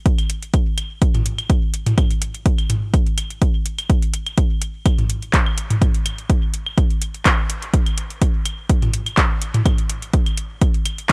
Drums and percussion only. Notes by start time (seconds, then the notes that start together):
0.06 kick, closed hi-hat
0.18 closed hi-hat, claves
0.30 closed hi-hat
0.42 closed hi-hat
0.54 kick, closed hi-hat
0.78 closed hi-hat, claves
1.02 kick, closed hi-hat
1.15 closed hi-hat, mid tom
1.26 closed hi-hat
1.38 closed hi-hat, claves
1.50 kick, closed hi-hat
1.74 closed hi-hat
1.86 closed hi-hat, mid tom
1.98 kick, closed hi-hat, claves
2.11 closed hi-hat
2.22 closed hi-hat
2.34 closed hi-hat
2.46 kick, closed hi-hat
2.58 closed hi-hat, claves
2.70 closed hi-hat, mid tom
2.94 kick, closed hi-hat
3.06 closed hi-hat
3.18 closed hi-hat, claves
3.30 closed hi-hat
3.42 kick, closed hi-hat
3.66 closed hi-hat
3.78 closed hi-hat, claves
3.90 kick, closed hi-hat
4.02 closed hi-hat
4.14 closed hi-hat
4.26 closed hi-hat, claves
4.38 kick, closed hi-hat
4.62 closed hi-hat
4.86 kick, closed hi-hat, claves
4.98 closed hi-hat, mid tom
5.10 closed hi-hat
5.22 closed hi-hat
5.34 kick, clap, closed hi-hat
5.46 claves
5.58 closed hi-hat
5.70 closed hi-hat, mid tom
5.82 kick, closed hi-hat
5.94 closed hi-hat
6.06 closed hi-hat, claves
6.18 closed hi-hat
6.30 kick, closed hi-hat
6.54 closed hi-hat
6.66 claves
6.78 kick, closed hi-hat
6.90 closed hi-hat
7.02 closed hi-hat
7.14 closed hi-hat
7.26 kick, clap, closed hi-hat, claves
7.50 closed hi-hat
7.62 closed hi-hat
7.74 kick, closed hi-hat
7.86 closed hi-hat, claves
7.98 closed hi-hat
8.10 closed hi-hat
8.22 kick, closed hi-hat
8.45 closed hi-hat, claves
8.69 kick, closed hi-hat
8.82 closed hi-hat, mid tom
8.94 closed hi-hat
9.06 closed hi-hat, claves
9.18 kick, clap, closed hi-hat
9.42 closed hi-hat
9.54 closed hi-hat, mid tom
9.66 kick, closed hi-hat, claves
9.78 closed hi-hat
9.90 closed hi-hat
10.02 closed hi-hat
10.13 kick, closed hi-hat
10.26 closed hi-hat, claves
10.37 closed hi-hat
10.62 kick, closed hi-hat
10.74 closed hi-hat
10.85 closed hi-hat, claves
10.98 closed hi-hat